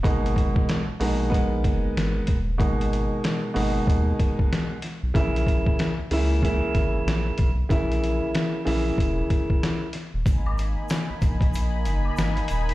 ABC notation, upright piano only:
X:1
M:4/4
L:1/8
Q:"Swing 16ths" 1/4=94
K:G#m
V:1 name="Upright piano"
[B,,G,A,D]2 z [B,,G,A,D] [G,A,B,D]3 z | [B,,G,A,D]3 [B,,G,A,D]4 z | [C,E,A,E]2 z [C,E,A,E] [C,E,A,E]3 z | [C,E,A,E]3 [C,E,A,E]4 z |
z8 |]